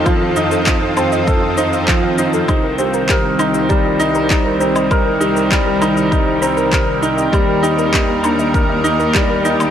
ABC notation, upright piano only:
X:1
M:4/4
L:1/8
Q:1/4=99
K:Cdor
V:1 name="Upright piano"
F, E E C A E F, E | E C B E G, E E C | B E G, E E C B E | G, E E D B E G, E |]